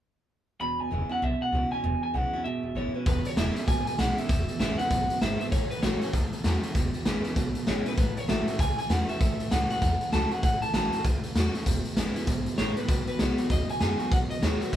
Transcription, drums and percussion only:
3.06 kick loud
3.06 closed hi-hat medium
3.25 closed hi-hat medium
3.37 snare loud
3.37 closed hi-hat medium
3.56 closed hi-hat medium
3.68 kick loud
3.68 closed hi-hat medium
3.87 closed hi-hat medium
3.99 snare loud
3.99 closed hi-hat medium
4.18 closed hi-hat medium
4.29 kick loud
4.29 closed hi-hat medium
4.49 closed hi-hat medium
4.60 snare loud
4.60 closed hi-hat medium
4.79 closed hi-hat medium
4.91 kick loud
4.91 closed hi-hat medium
5.10 closed hi-hat medium
5.22 snare loud
5.22 closed hi-hat medium
5.41 closed hi-hat medium
5.52 kick loud
5.52 closed hi-hat medium
5.71 closed hi-hat medium
5.83 snare loud
5.83 closed hi-hat medium
6.02 closed hi-hat medium
6.13 kick loud
6.13 closed hi-hat medium
6.33 closed hi-hat medium
6.44 snare medium
6.44 closed hi-hat medium
6.63 closed hi-hat medium
6.75 kick loud
6.75 closed hi-hat loud
6.94 closed hi-hat medium
7.06 snare loud
7.06 closed hi-hat medium
7.25 closed hi-hat medium
7.36 kick loud
7.36 closed hi-hat medium
7.55 closed hi-hat medium
7.67 snare loud
7.67 closed hi-hat medium
7.86 closed hi-hat medium
7.98 kick loud
7.98 closed hi-hat medium
8.17 closed hi-hat medium
8.29 snare loud
8.29 closed hi-hat medium
8.48 closed hi-hat medium
8.59 kick loud
8.59 closed hi-hat medium
8.78 closed hi-hat medium
8.90 snare medium
8.90 closed hi-hat medium
9.09 closed hi-hat medium
9.21 kick loud
9.21 closed hi-hat medium
9.40 closed hi-hat medium
9.51 snare loud
9.51 closed hi-hat medium
9.70 closed hi-hat medium
9.82 kick loud
9.82 closed hi-hat medium
10.01 closed hi-hat medium
10.12 snare medium
10.12 closed hi-hat medium
10.31 closed hi-hat medium
10.43 kick loud
10.43 closed hi-hat medium
10.62 closed hi-hat medium
10.74 snare loud
10.74 closed hi-hat medium
10.93 closed hi-hat medium
11.04 kick loud
11.04 closed hi-hat medium
11.24 closed hi-hat medium
11.36 snare loud
11.36 closed hi-hat medium
11.55 closed hi-hat medium
11.66 kick loud
11.66 closed hi-hat medium
11.85 closed hi-hat medium
11.97 snare loud
11.97 closed hi-hat medium
12.16 closed hi-hat medium
12.27 kick loud
12.27 closed hi-hat medium
12.46 closed hi-hat medium
12.58 snare loud
12.58 closed hi-hat medium
12.77 closed hi-hat medium
12.88 kick loud
12.88 closed hi-hat medium
13.07 closed hi-hat medium
13.19 snare loud
13.19 closed hi-hat medium
13.38 closed hi-hat medium
13.50 kick loud
13.50 closed hi-hat medium
13.69 closed hi-hat medium
13.80 snare medium
13.80 closed hi-hat medium
14.00 closed hi-hat medium
14.12 kick loud
14.12 closed hi-hat medium
14.31 closed hi-hat medium
14.43 snare loud
14.43 closed hi-hat medium
14.61 closed hi-hat medium

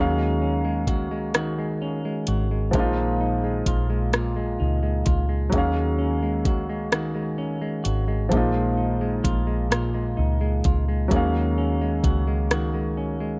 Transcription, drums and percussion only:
0.87 kick medium
0.87 closed hi-hat soft
1.34 cross-stick medium
1.34 closed hi-hat medium
2.27 closed hi-hat medium
2.73 kick medium
2.73 closed hi-hat medium
3.66 kick medium
3.66 closed hi-hat medium
4.13 cross-stick medium
4.13 closed hi-hat medium
5.06 kick medium
5.06 closed hi-hat soft
5.52 kick medium
5.52 closed hi-hat medium
6.45 kick medium
6.45 closed hi-hat soft
6.92 cross-stick loud
6.92 closed hi-hat medium
7.85 closed hi-hat medium
8.32 kick medium
8.32 closed hi-hat medium
9.24 kick medium
9.24 closed hi-hat medium
9.72 cross-stick medium
9.72 closed hi-hat medium
10.64 kick medium
10.64 closed hi-hat soft
11.11 kick loud
11.11 closed hi-hat medium
12.04 kick medium
12.04 closed hi-hat soft
12.51 cross-stick medium
12.51 closed hi-hat medium

